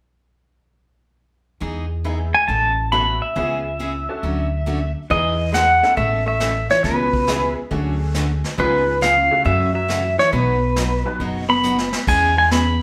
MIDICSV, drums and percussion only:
0, 0, Header, 1, 2, 480
1, 0, Start_track
1, 0, Key_signature, 4, "major"
1, 0, Tempo, 435730
1, 1780, Time_signature, 4, 2, 24, 8
1, 14126, End_track
2, 0, Start_track
2, 0, Title_t, "Drums"
2, 5622, Note_on_c, 9, 36, 33
2, 5623, Note_on_c, 9, 25, 52
2, 5732, Note_off_c, 9, 36, 0
2, 6102, Note_on_c, 9, 38, 62
2, 6102, Note_on_c, 9, 44, 65
2, 6212, Note_off_c, 9, 38, 0
2, 6212, Note_off_c, 9, 44, 0
2, 6425, Note_on_c, 9, 38, 39
2, 6535, Note_off_c, 9, 38, 0
2, 6577, Note_off_c, 9, 25, 0
2, 6577, Note_on_c, 9, 25, 48
2, 6578, Note_on_c, 9, 36, 32
2, 6688, Note_off_c, 9, 36, 0
2, 7052, Note_on_c, 9, 38, 66
2, 7052, Note_on_c, 9, 44, 62
2, 7162, Note_off_c, 9, 38, 0
2, 7162, Note_off_c, 9, 44, 0
2, 7379, Note_on_c, 9, 38, 43
2, 7489, Note_off_c, 9, 38, 0
2, 7535, Note_on_c, 9, 36, 35
2, 7536, Note_off_c, 9, 25, 0
2, 7536, Note_on_c, 9, 25, 47
2, 7536, Note_on_c, 9, 38, 40
2, 7645, Note_off_c, 9, 36, 0
2, 7646, Note_off_c, 9, 38, 0
2, 7859, Note_on_c, 9, 36, 53
2, 7969, Note_off_c, 9, 36, 0
2, 8016, Note_on_c, 9, 38, 61
2, 8016, Note_on_c, 9, 44, 50
2, 8126, Note_off_c, 9, 38, 0
2, 8126, Note_off_c, 9, 44, 0
2, 8495, Note_off_c, 9, 25, 0
2, 8495, Note_on_c, 9, 25, 46
2, 8495, Note_on_c, 9, 36, 35
2, 8605, Note_off_c, 9, 36, 0
2, 8970, Note_on_c, 9, 38, 61
2, 8970, Note_on_c, 9, 44, 62
2, 9080, Note_off_c, 9, 38, 0
2, 9080, Note_off_c, 9, 44, 0
2, 9298, Note_on_c, 9, 38, 43
2, 9408, Note_off_c, 9, 38, 0
2, 9454, Note_off_c, 9, 25, 0
2, 9454, Note_on_c, 9, 25, 46
2, 9455, Note_on_c, 9, 36, 35
2, 9565, Note_off_c, 9, 36, 0
2, 9936, Note_on_c, 9, 38, 61
2, 9936, Note_on_c, 9, 44, 61
2, 10046, Note_off_c, 9, 38, 0
2, 10046, Note_off_c, 9, 44, 0
2, 10415, Note_on_c, 9, 36, 35
2, 10419, Note_off_c, 9, 25, 0
2, 10419, Note_on_c, 9, 25, 47
2, 10525, Note_off_c, 9, 36, 0
2, 10900, Note_on_c, 9, 38, 59
2, 10900, Note_on_c, 9, 44, 57
2, 11010, Note_off_c, 9, 38, 0
2, 11010, Note_off_c, 9, 44, 0
2, 11224, Note_on_c, 9, 38, 43
2, 11334, Note_off_c, 9, 38, 0
2, 11377, Note_on_c, 9, 36, 34
2, 11380, Note_off_c, 9, 25, 0
2, 11380, Note_on_c, 9, 25, 51
2, 11488, Note_off_c, 9, 36, 0
2, 11855, Note_on_c, 9, 38, 62
2, 11855, Note_on_c, 9, 44, 66
2, 11965, Note_off_c, 9, 38, 0
2, 11965, Note_off_c, 9, 44, 0
2, 12336, Note_off_c, 9, 25, 0
2, 12336, Note_on_c, 9, 25, 55
2, 12337, Note_on_c, 9, 36, 33
2, 12447, Note_off_c, 9, 36, 0
2, 12820, Note_on_c, 9, 44, 55
2, 12930, Note_off_c, 9, 44, 0
2, 12979, Note_on_c, 9, 38, 57
2, 13090, Note_off_c, 9, 38, 0
2, 13137, Note_on_c, 9, 38, 85
2, 13248, Note_off_c, 9, 38, 0
2, 13300, Note_on_c, 9, 36, 73
2, 13303, Note_off_c, 9, 25, 0
2, 13303, Note_on_c, 9, 25, 50
2, 13303, Note_on_c, 9, 49, 73
2, 13410, Note_off_c, 9, 36, 0
2, 13413, Note_off_c, 9, 49, 0
2, 13784, Note_on_c, 9, 38, 63
2, 13784, Note_on_c, 9, 44, 58
2, 13894, Note_off_c, 9, 38, 0
2, 13894, Note_off_c, 9, 44, 0
2, 14126, Note_off_c, 9, 25, 0
2, 14126, End_track
0, 0, End_of_file